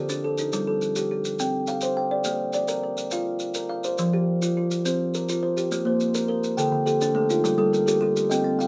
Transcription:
Already playing: G4
0.09 D4, maracas
0.24 A4
0.38 D#4, maracas
0.53 G3, maracas
0.67 A4
0.81 maracas
0.96 G4, maracas
1.11 G4
1.25 maracas
1.39 C4 G5, maracas
1.67 F5, maracas
1.81 C5, maracas
1.97 G5
2.11 D5
2.24 A#3, maracas
2.53 D5, maracas
2.68 A#4, maracas
2.83 A#4
2.97 maracas
3.11 F4 F5, maracas
3.39 maracas
3.54 A#4, maracas
3.69 F5
3.84 C5, maracas
3.98 F3, maracas
4.13 G4
4.42 F4, maracas
4.57 F4
4.71 maracas
4.85 C4 C5, maracas
5.14 A#4, maracas
5.29 F4, maracas
5.43 C5
5.57 G4, maracas
5.72 A#3, maracas
5.85 A#3 C5
6.00 maracas
6.14 A#4, maracas
6.28 A#4
6.44 maracas
6.57 D3 A4 G5, maracas
6.72 D3
6.86 G4 A4, maracas
7.01 D4, maracas
7.15 A3 A4
7.29 D#4 F4, maracas
7.44 G3, maracas
7.58 G3 A4
7.73 A#4, maracas
7.86 G4 A4, maracas
8.01 G4
8.16 maracas
8.30 C4 D#5 G5, maracas
8.44 C4
8.59 F5 G5, maracas

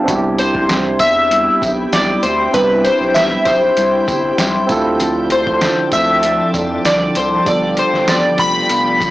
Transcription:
0.04 C2 C3 C4 D4 E4 G4 E5 G5 B5, kick, tambourine
0.08 G3 B3 E4 F#4 G4, closed hi-hat
0.16 G4
0.38 E4 G4 C5, closed hi-hat, tambourine
0.55 kick
0.69 C3 G3 E4 G4, snare, closed hi-hat, tambourine
0.99 E2 E5, kick, closed hi-hat, tambourine
1.30 G3 B3 E4 G4, closed hi-hat
1.61 B1 B3 E4 G4, kick, closed hi-hat, tambourine
1.92 B1 G3 B3 E4 G4 D5, snare, closed hi-hat, tambourine
2.23 D2 E4 G4 C5, closed hi-hat, tambourine
2.52 C2 C3 G3 B3 C4 D4 E4 B4, kick, closed hi-hat, tambourine
2.56 G4
2.84 G4 C5, closed hi-hat, tambourine
3.00 B1
3.14 G3 B3 E4 G4 E5, snare, closed hi-hat, tambourine
3.45 B1 E4 C5, kick, closed hi-hat, tambourine
3.77 C2 G3 E4 G4, closed hi-hat, tambourine
4.07 G1 E4 G4, kick, closed hi-hat, tambourine
4.38 B1 G3 E4 G4, snare, closed hi-hat, tambourine
4.67 D2 F3 C4 E4 F4 A4 D5 A5, kick, closed hi-hat, tambourine
4.71 C4 D4 A4
4.99 D3 F3 C4 D4 A4, closed hi-hat, tambourine
5.30 D4 A4 C5, closed hi-hat
5.34 C4
5.47 kick
5.61 D3 F3 C4 D4 A4, snare, closed hi-hat, tambourine
5.92 D2 C4 D4 A4 E5, kick, closed hi-hat, tambourine
6.23 F3 C4 D4 A4, closed hi-hat
6.53 F2 C4 D4 A4, kick, closed hi-hat, tambourine
6.84 C2 D3 F3 C4 D4 A4 D5, snare, closed hi-hat, tambourine
7.15 C2 C4 D4 A4 C5, closed hi-hat, tambourine
7.44 G1 G2 D3 F3 G3 B3 D4 F4 D5 G5 B5, kick, closed hi-hat, tambourine
7.48 G4 A4
7.76 F3 F4 G4 C5, closed hi-hat
7.93 G1, snare
8.07 G2 D3 F3 B3 F4 G4 D5, snare, closed hi-hat, tambourine
8.37 F1 F3 B3 F4 G4 B5, kick, closed hi-hat, tambourine
8.68 F1 F3 B3 F4 G4, closed hi-hat, tambourine
9.00 G1 F3 B3 F4 G4, kick, closed hi-hat, tambourine

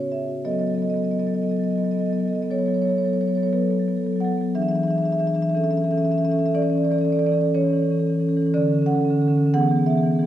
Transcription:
Already playing: C#3 F#4
0.00 C#5
0.11 G#4 E5
0.28 F#4
0.44 F#3 B3 A4 D#5
0.52 F#3 B3 A4 D#5
0.59 F#3 B3 A4 D#5
0.67 F#3 B3 A4 D#5
0.74 F#3 B3 A4 D#5
0.82 F#3 A4 D#5
0.87 B3 A4 D#5
0.94 F#3 B3 A4 D#5
1.03 F#3 B3 A4 D#5
1.11 F#3 B3 A4 D#5
1.19 F#3 B3 A4 D#5
1.27 F#3 B3 A4 D#5
1.34 F#3 B3 A4 D#5
1.42 F#3 B3 A4 D#5
1.49 F#3 B3 A4 D#5
1.57 F#3 A4 D#5
1.61 B3 D#5
1.66 F#3 B3 A4
1.71 A4 D#5
1.76 F#3 B3 D#5
1.82 F#3 A4 D#5
1.86 B3 A4
1.91 F#3 B3 D#5
1.97 F#3 A4 D#5
2.03 B3 A4 D#5
2.10 F#3 B3 A4 D#5
2.18 F#3 B3 A4 D#5
2.26 F#3 B3 A4 D#5
2.33 F#3 B3 A4 D#5
2.41 F#3 B3 A4 D#5
2.51 F#3 B3 A4 C#5
2.59 F#3 B3 A4 C#5
2.66 F#3 B3 A4 C#5
2.73 F#3 B3 A4 C#5
2.80 B3 A4 C#5
2.85 F#3 A4
2.89 B3 C#5
2.94 F#3 A4
2.98 B3 A4 C#5
3.04 F#3 B3 A4 C#5
3.12 F#3 B3 A4 C#5
3.20 F#3 B3 A4 C#5
3.28 F#3 B3 A4 C#5
3.35 F#3 B3 A4 C#5
3.42 B3 A4 C#5
3.47 F#3
3.53 F#3 B3 A4 B4
3.60 F#3 B3 A4
3.68 F#3 B3 A4
3.75 A4
3.79 F#3 B3 A4
3.88 F#3 B3 A4
3.96 F#3 B3 A4
4.04 F#3 B3 A4
4.11 B3 A4
4.16 F#3 A4
4.20 F#3 B3 F#5
4.25 A4
4.29 F#3 B3 A4
4.37 F#3 B3 A4
4.46 B3 A4
4.55 E3 D4 G#4 E5
4.62 E3 D4 G#4 E5
4.68 E3 D4 G#4 E5
4.75 E3 D4 E5
4.80 G#4 E5
4.87 E3 D4 G#4 E5
4.95 E3 D4 G#4 E5
5.02 E3 D4 G#4 E5
5.11 E3 D4 G#4 E5
5.18 E3 D4 G#4 E5
5.25 E3 D4 G#4 E5
5.33 E3 D4 G#4 E5
5.42 E3 D4 G#4 E5
5.49 D4 G#4 E5
5.55 E3 C#4 A4 E5
5.62 E3 C#4 A4 E5
5.70 E3 C#4 A4 E5
5.77 C#4 A4 E5
5.82 E3 C#4 A4 E5
5.90 E3 C#4 A4 E5
5.97 A4 E5
6.01 E3 C#4 A4 E5
6.10 E3 C#4 A4 E5
6.17 E3 C#4 A4 E5
6.24 C#4 A4 E5
6.30 E3 C#4 A4 E5
6.39 E3 C#4 A4 E5
6.46 C#4 A4 E5
6.54 E3 C#4 A4 D5
6.62 E3 C#4 A4 D5
6.69 E3 C#4 A4 D5
6.77 C#4 A4 D5
6.83 E3 C#4 A4 D5
6.90 E3 C#4 A4 D5
6.98 E3 C#4 A4 D5
7.05 A4 D5
7.09 E3 C#4 D5
7.16 E3 C#4 A4 D5
7.24 C#4 A4 D5
7.28 E3 A4
7.34 C#4 D5
7.38 E3 C#4 A4 D5
7.45 A4
7.54 E3 C#4 A4 C#5
7.62 E3 C#4 A4
7.69 C#4 A4
7.73 E3 C#4 A4
7.82 E3 C#4 A4
7.90 E3 C#4 A4
7.99 E3 C#4 A4
8.07 E3 C#4 A4
8.13 C#4 A4
8.20 E3 C#4 A4
8.28 E3 C#4 A4
8.35 E3 C#4 A4
8.42 C#4 A4
8.46 E3
8.54 D3 C#4 A4 D5
8.61 D3 C#4 A4
8.68 C#4 A4
8.72 D3 A4
8.79 D3 C#4 A4
8.86 C#4 A4 F#5
8.92 D3 C#4 A4
9.01 D3 A4
9.05 C#4 A4
9.11 D3 C#4
9.15 A4
9.19 D3 C#4 A4
9.28 D3 C#4 A4
9.35 D3 C#4 A4
9.42 A4
9.46 D3 C#4
9.54 E3 B3 G#4 F#5
9.62 E3 B3 G#4
9.68 E3 B3 G#4
9.76 E3 B3 G#4
9.83 E3 G#4 E5
9.88 B3 G#4
9.95 E3 B3 G#4
10.03 E3 B3 G#4
10.11 E3 B3 G#4
10.19 E3 B3 G#4

